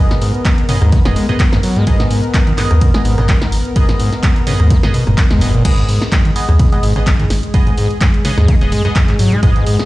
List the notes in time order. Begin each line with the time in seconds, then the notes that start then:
Already playing: B3 G#4 A#4 D#5
0.11 G#2, snare, closed hi-hat
0.22 G#2, open hi-hat
0.35 closed hi-hat
0.45 G#3, kick, clap, closed hi-hat, ride
0.58 closed hi-hat
0.69 C#3 B3 G#4 D#5, mid tom, open hi-hat
0.82 D#2 G#2, cross-stick, closed hi-hat
0.92 B3, kick, closed hi-hat, ride
1.05 D#1 C#3 B3 G#4 D#5, snare, closed hi-hat, mid tom
1.16 G#3, open hi-hat
1.29 F#2 B3 G#4 D#5, cross-stick, closed hi-hat, mid tom
1.40 kick, clap, closed hi-hat, ride
1.53 G#2, snare, closed hi-hat, mid tom
1.63 F#3, open hi-hat
1.76 G#2 G#3, closed hi-hat
1.87 G#1 G#2 B3 G#4 D#5, kick, closed hi-hat, ride
2.00 G#2, snare, closed hi-hat
2.11 G#2, open hi-hat
2.23 closed hi-hat
2.34 G#3, kick, clap, closed hi-hat, ride
2.47 D#3, closed hi-hat
2.58 B3 G#4 D#5, snare, clap, mid tom, open hi-hat
2.71 D#2 F#2, cross-stick, closed hi-hat
2.81 B2, kick, closed hi-hat, ride
2.94 G#3 B3 G#4 D#5, snare, closed hi-hat
3.05 G#1 G#2, open hi-hat
3.18 C#3 B3 G#4 D#5, cross-stick, closed hi-hat, mid tom
3.29 G#3, kick, clap, closed hi-hat, ride
3.42 D#3, snare, closed hi-hat
3.52 G#1, open hi-hat
3.65 closed hi-hat
3.76 G#1 B3 G#4 D#5, kick, closed hi-hat, ride
3.89 G#2, snare, closed hi-hat
4.00 G#2, open hi-hat
4.13 snare, closed hi-hat
4.23 G#3, kick, clap, closed hi-hat, ride
4.36 closed hi-hat
4.47 C#3 B3 G#4 D#5, mid tom, open hi-hat
4.60 D#2 G#2, cross-stick, closed hi-hat
4.70 B3, kick, closed hi-hat, ride
4.83 C#3 B3 G#4 D#5, snare, closed hi-hat, mid tom
4.94 B2, open hi-hat
5.07 F#1 G#2, cross-stick, closed hi-hat, mid tom
5.18 kick, clap, closed hi-hat, ride
5.31 D#2 G#3, snare, closed hi-hat, mid tom
5.41 F#1 F#2 B3 G#4 D#5, open hi-hat
5.54 A#2, closed hi-hat
5.65 G#1 G#2 G#3 B3 G#4 D#5, kick, closed hi-hat, crash, ride
5.78 G#2, closed hi-hat
5.89 G#2, open hi-hat
6.02 snare, closed hi-hat
6.12 G#3, kick, clap, closed hi-hat, mid tom, ride
6.25 D#3, closed hi-hat
6.36 B3 G#4 D#5, open hi-hat
6.49 D#2 F#2, cross-stick, closed hi-hat
6.59 B2, kick, closed hi-hat, ride
6.72 G#3 B3 G#4 D#5, closed hi-hat
6.83 G#1 G#2, open hi-hat
6.96 C#3 B3 G#4 D#5, cross-stick, closed hi-hat
7.07 G#3, kick, clap, closed hi-hat, ride
7.20 D#3, closed hi-hat, mid tom
7.30 G#1, snare, open hi-hat
7.43 closed hi-hat
7.54 G#1 B3 G#4 D#5, kick, closed hi-hat, ride
7.67 G#2, closed hi-hat
7.78 G#2, open hi-hat
7.90 closed hi-hat
8.01 G#3, kick, clap, closed hi-hat, mid tom, ride
8.14 closed hi-hat
8.25 C#3 B3 G#4 D#5, snare, open hi-hat
8.38 D#2 G#2, cross-stick, snare, closed hi-hat
8.48 B3, kick, closed hi-hat, ride
8.61 D#1 C#3 B3 G#4 D#5, closed hi-hat
8.72 G#3, mid tom, open hi-hat
8.85 F#2 B3 G#4 D#5, cross-stick, closed hi-hat
8.96 kick, clap, closed hi-hat, ride
9.08 G#2, clap, closed hi-hat
9.19 G#2 F#3, mid tom, open hi-hat
9.32 G#3, closed hi-hat, mid tom
9.43 G#1 G#2 B3 G#4 D#5, kick, closed hi-hat, ride
9.56 G#2, closed hi-hat
9.66 G#2, open hi-hat
9.79 snare, closed hi-hat